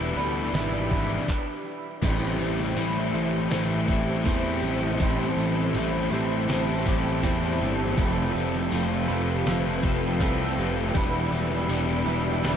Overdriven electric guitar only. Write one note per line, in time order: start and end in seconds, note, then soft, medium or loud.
0.00 0.17 E3 medium
0.00 0.17 G3 medium
0.00 0.16 B3 medium
0.00 0.15 E4 medium
0.17 0.52 E3 medium
0.17 0.53 G3 medium
0.17 0.53 B3 medium
0.17 0.53 E4 medium
0.53 1.26 E2 medium
0.53 1.26 B2 medium
0.53 0.90 E3 medium
0.53 0.90 G3 medium
0.53 0.89 B3 medium
0.53 0.88 E4 medium
0.89 1.26 E3 medium
0.89 1.26 G3 medium
0.89 1.26 B3 medium
0.89 1.25 E4 medium
2.02 3.50 A2 medium
2.02 2.76 E3 loud
2.02 2.76 A3 loud
2.02 2.77 C4 loud
2.02 2.77 E4 loud
2.76 3.51 E3 medium
2.76 3.51 A3 medium
2.76 3.52 C4 medium
2.76 3.52 E4 medium
3.51 4.25 A2 medium
3.51 4.26 E3 medium
3.51 3.91 A3 loud
3.51 3.89 C4 loud
3.51 3.89 E4 loud
3.89 4.27 A3 medium
3.89 4.28 C4 medium
3.89 4.28 E4 medium
4.26 5.01 E3 medium
4.26 5.02 A3 medium
4.26 5.02 C4 medium
4.26 5.03 E4 medium
5.01 6.12 A2 medium
5.01 5.75 E3 loud
5.01 5.76 A3 loud
5.01 5.77 C4 loud
5.01 5.77 E4 loud
5.75 6.50 E3 medium
5.75 6.49 A3 medium
5.75 6.50 C4 medium
5.75 6.51 E4 medium
6.49 7.23 A2 medium
6.49 7.22 E3 medium
6.49 6.87 A3 loud
6.49 6.87 C4 loud
6.49 6.86 E4 medium
6.86 7.22 A3 medium
6.86 7.23 C4 medium
6.86 7.24 E4 medium
7.23 7.98 E3 medium
7.23 7.95 A3 medium
7.23 7.96 C4 medium
7.23 7.99 E4 medium
7.98 9.09 F2 medium
7.98 9.09 C3 loud
7.98 8.71 F3 loud
7.98 8.72 A3 loud
7.98 8.72 C4 loud
7.98 8.73 F4 loud
8.72 9.45 F3 medium
8.72 9.46 A3 medium
8.72 9.46 C4 medium
8.72 9.46 F4 medium
9.45 10.20 F2 loud
9.45 10.20 C3 loud
9.45 9.85 F3 medium
9.45 9.84 A3 loud
9.45 9.83 C4 medium
9.45 9.82 F4 loud
9.84 10.19 F3 medium
9.84 10.20 A3 medium
9.84 10.20 C4 medium
9.84 10.21 F4 medium
10.20 10.92 F3 medium
10.20 10.93 A3 medium
10.20 10.93 C4 medium
10.20 10.93 F4 medium
10.95 12.06 E2 loud
10.95 12.06 B2 medium
10.95 11.69 E3 medium
10.95 11.70 G3 loud
10.95 11.70 B3 loud
10.95 11.71 E4 loud
11.69 12.43 E3 medium
11.69 12.44 G3 medium
11.69 12.43 B3 medium
11.69 12.44 E4 medium
12.43 12.57 E2 medium
12.43 12.57 B2 loud
12.43 12.57 E3 medium
12.43 12.57 G3 loud
12.43 12.57 B3 medium
12.43 12.57 E4 loud